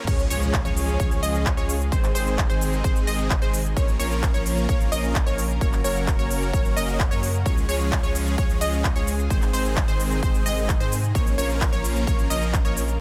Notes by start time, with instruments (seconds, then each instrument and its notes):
0.07 sub bass C#2, analog synth pad C#3 G#3 F4 G#4, supersaw synth F3 G#3 C#4 G#4 C#5, synth pluck C#5, kick, closed hi-hat, crash, impact, shaker
0.19 closed hi-hat, shaker
0.30 sub bass C#2, supersaw synth F3 G#3 C#4 G#4 C#5, synth pluck C#5, open hi-hat, shaker
0.42 closed hi-hat, shaker
0.54 kick, clap, closed hi-hat, shaker
0.65 sub bass C#2, supersaw synth F3 G#3 C#4 G#4 C#5, synth pluck C#5, closed hi-hat, shaker
0.77 open hi-hat, shaker
0.88 closed hi-hat, shaker
1.00 sub bass C#2, supersaw synth F3 G#3 C#4 G#4 C#5, synth pluck C#5, kick, closed hi-hat, shaker
1.11 closed hi-hat, shaker
1.23 sub bass C#2, supersaw synth F3 G#3 C#4 G#4 D#5, synth pluck D#5, open hi-hat, shaker
1.34 closed hi-hat, shaker
1.46 kick, clap, closed hi-hat, shaker
1.57 sub bass C#2, supersaw synth F3 G#3 C#4 G#4 C#5, synth pluck C#5, closed hi-hat, shaker
1.69 open hi-hat, shaker
1.81 closed hi-hat, shaker
1.92 sub bass G#1, analog synth pad C3 D#4 G#4, supersaw synth D#3 G#3 C4 G#4 C5, synth pluck C5, kick, closed hi-hat, shaker
2.04 clap, closed hi-hat, shaker
2.15 sub bass G#1, supersaw synth D#3 G#3 C4 G#4 C5, synth pluck C5, open hi-hat, shaker
2.27 closed hi-hat, shaker
2.38 kick, clap, closed hi-hat, shaker
2.50 sub bass G#1, supersaw synth D#3 G#3 C4 G#4 C5, synth pluck C5, closed hi-hat, shaker
2.61 open hi-hat, shaker
2.73 closed hi-hat, shaker
2.84 sub bass G#1, supersaw synth D#3 G#3 C4 G#4 C5, synth pluck C5, kick, closed hi-hat, shaker
2.96 closed hi-hat, shaker
3.07 sub bass G#1, supersaw synth D#3 G#3 C4 G#4 D#5, synth pluck D#5, open hi-hat, shaker
3.19 closed hi-hat, shaker
3.30 kick, clap, closed hi-hat, shaker
3.42 sub bass G#1, supersaw synth D#3 G#3 C4 G#4 C5, synth pluck C5, closed hi-hat, shaker
3.53 open hi-hat, shaker
3.65 closed hi-hat, shaker
3.76 sub bass A#1, analog synth pad C#3 A#3 F4 A#4, supersaw synth F3 A#3 C#4 A#4 C#5, synth pluck C#5, kick, closed hi-hat, shaker
3.88 closed hi-hat, shaker
3.99 sub bass A#1, supersaw synth F3 A#3 C#4 A#4 C#5, synth pluck C#5, open hi-hat, shaker
4.11 closed hi-hat, shaker
4.23 kick, clap, closed hi-hat, shaker
4.34 sub bass A#1, supersaw synth F3 A#3 C#4 A#4 C#5, synth pluck C#5, closed hi-hat, shaker
4.46 open hi-hat, shaker
4.57 closed hi-hat, shaker
4.69 sub bass A#1, supersaw synth F3 A#3 C#4 A#4 C#5, synth pluck C#5, kick, closed hi-hat, shaker
4.80 closed hi-hat, shaker
4.92 sub bass A#1, supersaw synth F3 A#3 C#4 A#4 D#5, synth pluck D#5, open hi-hat, shaker
5.04 closed hi-hat, shaker
5.15 kick, clap, closed hi-hat, shaker
5.27 sub bass A#1, supersaw synth F3 A#3 C#4 A#4 C#5, synth pluck C#5, closed hi-hat, shaker
5.38 open hi-hat, shaker
5.50 closed hi-hat, shaker
5.61 sub bass F#1, supersaw synth F#3 A#3 C#4 A#4 C#5, analog synth pad F#4, synth pluck C#5, kick, closed hi-hat, shaker
5.73 clap, closed hi-hat, shaker
5.84 sub bass F#1, supersaw synth F#3 A#3 C#4 A#4 C#5, synth pluck C#5, open hi-hat, shaker
5.96 closed hi-hat, shaker
6.07 kick, clap, closed hi-hat, shaker
6.19 sub bass F#1, supersaw synth F#3 A#3 C#4 A#4 C#5, synth pluck C#5, closed hi-hat, shaker
6.31 open hi-hat, shaker
6.42 closed hi-hat, shaker
6.53 sub bass F#1, supersaw synth F#3 A#3 C#4 A#4 C#5, synth pluck C#5, kick, closed hi-hat, shaker
6.65 closed hi-hat, shaker
6.77 sub bass F#1, supersaw synth F#3 A#3 C#4 A#4 D#5, synth pluck D#5, open hi-hat, shaker
6.88 closed hi-hat, shaker
7.00 kick, clap, closed hi-hat, shaker
7.11 sub bass F#2, supersaw synth F#3 A#3 C#4 A#4 C#5, synth pluck C#5, closed hi-hat, shaker
7.23 open hi-hat, shaker
7.34 closed hi-hat, shaker
7.46 sub bass C#2, supersaw synth F3 G#3 C#4 G#4 C#5, analog synth pad G#3 F4 G#4, synth pluck C#5, kick, closed hi-hat, shaker
7.57 closed hi-hat, shaker
7.69 sub bass C#2, supersaw synth F3 G#3 C#4 G#4 C#5, synth pluck C#5, open hi-hat, shaker
7.80 closed hi-hat, shaker
7.92 kick, clap, closed hi-hat, shaker
8.03 sub bass C#2, supersaw synth F3 G#3 C#4 G#4 C#5, synth pluck C#5, closed hi-hat, shaker
8.15 open hi-hat, shaker
8.27 closed hi-hat, shaker
8.38 sub bass C#2, supersaw synth F3 G#3 C#4 G#4 C#5, synth pluck C#5, kick, closed hi-hat, shaker
8.50 closed hi-hat, shaker
8.61 sub bass C#2, supersaw synth F3 G#3 C#4 G#4 D#5, synth pluck D#5, open hi-hat, shaker
8.73 closed hi-hat, shaker
8.84 kick, clap, closed hi-hat, shaker
8.96 sub bass C#2, supersaw synth F3 G#3 C#4 G#4 C#5, synth pluck C#5, closed hi-hat, shaker
9.07 open hi-hat, shaker
9.19 closed hi-hat, shaker
9.30 sub bass G#1, analog synth pad C3 D#4, supersaw synth D#3 G#3 C4 G#4 C5, synth pluck C5, kick, closed hi-hat, shaker
9.42 clap, closed hi-hat, shaker
9.53 sub bass G#1, supersaw synth D#3 G#3 C4 G#4 C5, synth pluck C5, open hi-hat, shaker
9.65 closed hi-hat, shaker
9.77 kick, clap, closed hi-hat, shaker
9.88 sub bass G#1, supersaw synth D#3 G#3 C4 G#4 C5, synth pluck C5, closed hi-hat, shaker
10.00 open hi-hat, shaker
10.11 closed hi-hat, shaker
10.23 sub bass G#1, supersaw synth D#3 G#3 C4 G#4 C5, synth pluck C5, kick, closed hi-hat, shaker
10.34 closed hi-hat, shaker
10.46 sub bass G#1, supersaw synth D#3 G#3 C4 G#4 D#5, synth pluck D#5, open hi-hat, shaker
10.57 closed hi-hat, shaker
10.69 kick, clap, closed hi-hat, shaker
10.80 sub bass G#2, supersaw synth D#3 G#3 C4 G#4 C5, synth pluck C5, closed hi-hat, shaker
10.92 open hi-hat, shaker
11.04 closed hi-hat, shaker
11.15 sub bass A#1, analog synth pad C#3 A#3 F4 A#4, supersaw synth F3 A#3 C#4 A#4 C#5, synth pluck C#5, kick, closed hi-hat, shaker
11.27 closed hi-hat, shaker
11.38 sub bass A#1, supersaw synth F3 A#3 C#4 A#4 C#5, synth pluck C#5, open hi-hat, shaker
11.50 closed hi-hat, shaker
11.61 kick, clap, closed hi-hat, shaker
11.73 sub bass A#1, supersaw synth F3 A#3 C#4 A#4 C#5, synth pluck C#5, closed hi-hat, shaker
11.84 open hi-hat, shaker
11.96 closed hi-hat, shaker
12.07 sub bass A#1, supersaw synth F3 A#3 C#4 A#4 C#5, synth pluck C#5, kick, closed hi-hat, shaker
12.19 closed hi-hat, shaker
12.30 sub bass A#1, supersaw synth F3 A#3 C#4 A#4 D#5, synth pluck D#5, open hi-hat, shaker
12.42 closed hi-hat, shaker
12.54 kick, clap, closed hi-hat, shaker
12.65 sub bass A#1, supersaw synth F3 A#3 C#4 A#4 C#5, synth pluck C#5, closed hi-hat, shaker
12.77 open hi-hat, shaker
12.88 closed hi-hat, shaker